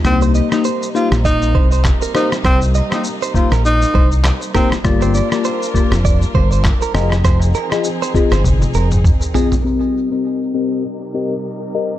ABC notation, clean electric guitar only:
X:1
M:4/4
L:1/16
Q:"Swing 16ths" 1/4=100
K:Cm
V:1 name="Clean electric guitar"
z c e z c2 z2 e z c c z B B z | c z e z2 c z B z2 c z3 B z | z c d z c2 z2 d z c c z B B z | c z B z2 c z c z2 B z3 A z |
z16 |]